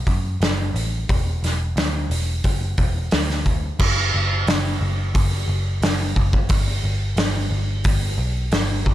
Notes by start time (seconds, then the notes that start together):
0.07 F#2, kick, open hi-hat
0.41 F#1, snare, open hi-hat
0.74 A1, open hi-hat
1.09 E1, kick, open hi-hat
1.43 E1, snare, open hi-hat
1.76 D2, snare, open hi-hat
2.10 E1, open hi-hat
2.44 F#1, kick, open hi-hat
2.78 E1, kick, open hi-hat
3.11 D2, snare, open hi-hat
3.30 snare
3.46 kick, open hi-hat
3.79 F#1, kick, crash
4.14 F#1
4.47 F#1, snare, open hi-hat
4.81 F#1
5.14 F#1, kick, open hi-hat
5.48 F#1
5.82 F#1, snare, open hi-hat
6.16 F#1, kick
6.33 kick
6.49 G1, kick, open hi-hat
6.84 G1
7.16 G1, snare, open hi-hat
7.51 G1
7.84 G1, kick, open hi-hat
8.18 B1
8.52 G1, snare, open hi-hat
8.86 G1, kick